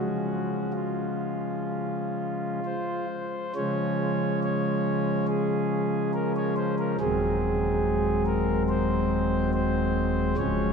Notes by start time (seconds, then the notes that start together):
Already playing: C#3 F3 G#3 C#4 F#4
0.73 F4
2.65 C5
3.55 C#3 F3 G#3 C#4 C#5
4.43 C#5
5.28 G#4
6.14 A#4
6.36 C#5
6.57 C5
6.79 A#4
7.00 D#1 D#2 F#3 G#3 C4 G#4
8.27 A#4
8.69 C5
9.53 C5
10.37 C#1 C#2 F3 G#3 C#4 C#5